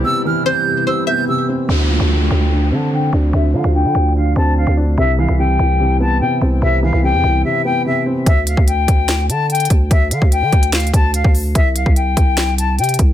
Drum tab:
HH |------------------------------------------------------------------------------------------------|------------------------------------------------------------------------------------------------|------------------------------------------------------------------------------------------------|------------------------------------------------------------------------------------------------|
CP |------------------------------------------------------------------------------------------------|------------------------------------------------------------------------------------------------|------------------------------------------------------------------------------------------------|------------------------------------------------------------------------------------------------|
SD |------------------------------------------------------------------------------------------------|------------------------------------------------------------------------------------------------|------------------------------------------------------------------------------------------------|------------------------------------------------------------------------------------------------|
BD |------------------------------------------------------------------------------------------------|------------------------------------------------------------------------------------------------|------------------------------------------------------------------------------------------------|------------------------------------------------------------------------------------------------|

HH |------------------------------------------------------------------------------------------------|x-----------x-----------x-----------x-----------x-----------x-----------x--x--x--x--x-----------|x-----------x-----------x-----------x-----x-----x---x---x---x-----------x-----------o-----------|x-----------x-----------x-----------x-----------x-----------x-----------x--x--x--x--x-----------|
CP |------------------------------------------------------------------------------------------------|------------------------------------------------x-----------------------------------------------|------------------------------------------------x-----------------------------------------------|------------------------------------------------x-----------------------------------------------|
SD |------------------------------------------------------------------------------------------------|------------------------------------------------o-----------------------------------------------|------------------------------------------------o-----------------------------------------------|------------------------------------------------o-----------------------------------------------|
BD |------------------------------------------------------------------------------------------------|o-----------------o-----------------o-----------------------------------------------o-----------|o-----------------o-----------------o-----------------------o-----------------o-----------------|o-----------------o-----------------o-----------------------------------------------o-----------|